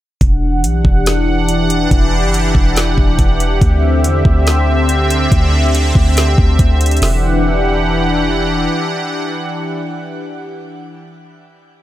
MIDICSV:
0, 0, Header, 1, 4, 480
1, 0, Start_track
1, 0, Key_signature, 1, "minor"
1, 0, Tempo, 425532
1, 238, Time_signature, 4, 2, 24, 8
1, 13339, End_track
2, 0, Start_track
2, 0, Title_t, "Analog synth pad"
2, 0, Program_c, 0, 89
2, 238, Note_on_c, 0, 52, 79
2, 238, Note_on_c, 0, 62, 76
2, 238, Note_on_c, 0, 67, 73
2, 238, Note_on_c, 0, 78, 86
2, 4039, Note_off_c, 0, 52, 0
2, 4040, Note_off_c, 0, 62, 0
2, 4040, Note_off_c, 0, 78, 0
2, 4078, Note_on_c, 0, 50, 75
2, 4078, Note_on_c, 0, 60, 74
2, 4079, Note_on_c, 0, 76, 91
2, 7873, Note_off_c, 0, 67, 0
2, 7880, Note_off_c, 0, 50, 0
2, 7880, Note_off_c, 0, 60, 0
2, 7880, Note_off_c, 0, 76, 0
2, 7918, Note_on_c, 0, 52, 77
2, 7918, Note_on_c, 0, 62, 75
2, 7919, Note_on_c, 0, 67, 71
2, 7919, Note_on_c, 0, 78, 85
2, 11770, Note_off_c, 0, 52, 0
2, 11770, Note_off_c, 0, 62, 0
2, 11771, Note_off_c, 0, 67, 0
2, 11771, Note_off_c, 0, 78, 0
2, 13339, End_track
3, 0, Start_track
3, 0, Title_t, "808-style bass"
3, 0, Program_c, 1, 38
3, 238, Note_on_c, 1, 28, 108
3, 719, Note_on_c, 1, 35, 96
3, 736, Note_off_c, 1, 28, 0
3, 946, Note_off_c, 1, 35, 0
3, 956, Note_on_c, 1, 28, 109
3, 2112, Note_off_c, 1, 28, 0
3, 2158, Note_on_c, 1, 28, 105
3, 2518, Note_on_c, 1, 30, 103
3, 2535, Note_off_c, 1, 28, 0
3, 2860, Note_off_c, 1, 30, 0
3, 2876, Note_on_c, 1, 28, 107
3, 3338, Note_off_c, 1, 28, 0
3, 3358, Note_on_c, 1, 28, 97
3, 3589, Note_off_c, 1, 28, 0
3, 3597, Note_on_c, 1, 28, 111
3, 4058, Note_off_c, 1, 28, 0
3, 4078, Note_on_c, 1, 38, 106
3, 4558, Note_on_c, 1, 40, 97
3, 4574, Note_off_c, 1, 38, 0
3, 4786, Note_off_c, 1, 40, 0
3, 4795, Note_on_c, 1, 38, 104
3, 5952, Note_off_c, 1, 38, 0
3, 5998, Note_on_c, 1, 38, 115
3, 6689, Note_off_c, 1, 38, 0
3, 6715, Note_on_c, 1, 38, 107
3, 7177, Note_off_c, 1, 38, 0
3, 7198, Note_on_c, 1, 38, 106
3, 7429, Note_off_c, 1, 38, 0
3, 7436, Note_on_c, 1, 38, 107
3, 7898, Note_off_c, 1, 38, 0
3, 7918, Note_on_c, 1, 28, 114
3, 9793, Note_off_c, 1, 28, 0
3, 13339, End_track
4, 0, Start_track
4, 0, Title_t, "Drums"
4, 238, Note_on_c, 9, 36, 117
4, 238, Note_on_c, 9, 42, 76
4, 350, Note_off_c, 9, 36, 0
4, 351, Note_off_c, 9, 42, 0
4, 721, Note_on_c, 9, 42, 79
4, 834, Note_off_c, 9, 42, 0
4, 956, Note_on_c, 9, 36, 98
4, 1069, Note_off_c, 9, 36, 0
4, 1200, Note_on_c, 9, 42, 73
4, 1209, Note_on_c, 9, 38, 106
4, 1312, Note_off_c, 9, 42, 0
4, 1322, Note_off_c, 9, 38, 0
4, 1676, Note_on_c, 9, 42, 76
4, 1788, Note_off_c, 9, 42, 0
4, 1918, Note_on_c, 9, 42, 73
4, 2031, Note_off_c, 9, 42, 0
4, 2158, Note_on_c, 9, 36, 124
4, 2158, Note_on_c, 9, 42, 80
4, 2271, Note_off_c, 9, 36, 0
4, 2271, Note_off_c, 9, 42, 0
4, 2641, Note_on_c, 9, 42, 76
4, 2754, Note_off_c, 9, 42, 0
4, 2875, Note_on_c, 9, 36, 102
4, 2988, Note_off_c, 9, 36, 0
4, 3119, Note_on_c, 9, 42, 71
4, 3129, Note_on_c, 9, 38, 114
4, 3232, Note_off_c, 9, 42, 0
4, 3242, Note_off_c, 9, 38, 0
4, 3359, Note_on_c, 9, 36, 89
4, 3471, Note_off_c, 9, 36, 0
4, 3595, Note_on_c, 9, 42, 72
4, 3597, Note_on_c, 9, 36, 95
4, 3708, Note_off_c, 9, 42, 0
4, 3709, Note_off_c, 9, 36, 0
4, 3838, Note_on_c, 9, 42, 71
4, 3951, Note_off_c, 9, 42, 0
4, 4078, Note_on_c, 9, 36, 124
4, 4078, Note_on_c, 9, 42, 76
4, 4190, Note_off_c, 9, 36, 0
4, 4191, Note_off_c, 9, 42, 0
4, 4561, Note_on_c, 9, 42, 80
4, 4674, Note_off_c, 9, 42, 0
4, 4795, Note_on_c, 9, 36, 94
4, 4908, Note_off_c, 9, 36, 0
4, 5039, Note_on_c, 9, 42, 71
4, 5049, Note_on_c, 9, 38, 110
4, 5151, Note_off_c, 9, 42, 0
4, 5161, Note_off_c, 9, 38, 0
4, 5515, Note_on_c, 9, 42, 73
4, 5628, Note_off_c, 9, 42, 0
4, 5758, Note_on_c, 9, 42, 74
4, 5870, Note_off_c, 9, 42, 0
4, 5998, Note_on_c, 9, 36, 116
4, 5998, Note_on_c, 9, 42, 78
4, 6111, Note_off_c, 9, 36, 0
4, 6111, Note_off_c, 9, 42, 0
4, 6481, Note_on_c, 9, 42, 77
4, 6594, Note_off_c, 9, 42, 0
4, 6715, Note_on_c, 9, 36, 95
4, 6828, Note_off_c, 9, 36, 0
4, 6959, Note_on_c, 9, 42, 74
4, 6969, Note_on_c, 9, 38, 109
4, 7072, Note_off_c, 9, 42, 0
4, 7082, Note_off_c, 9, 38, 0
4, 7199, Note_on_c, 9, 36, 90
4, 7311, Note_off_c, 9, 36, 0
4, 7435, Note_on_c, 9, 42, 73
4, 7437, Note_on_c, 9, 36, 90
4, 7548, Note_off_c, 9, 42, 0
4, 7549, Note_off_c, 9, 36, 0
4, 7678, Note_on_c, 9, 42, 73
4, 7738, Note_off_c, 9, 42, 0
4, 7738, Note_on_c, 9, 42, 60
4, 7799, Note_off_c, 9, 42, 0
4, 7799, Note_on_c, 9, 42, 53
4, 7858, Note_off_c, 9, 42, 0
4, 7858, Note_on_c, 9, 42, 43
4, 7918, Note_on_c, 9, 46, 87
4, 7928, Note_on_c, 9, 38, 102
4, 7971, Note_off_c, 9, 42, 0
4, 8030, Note_off_c, 9, 46, 0
4, 8040, Note_off_c, 9, 38, 0
4, 13339, End_track
0, 0, End_of_file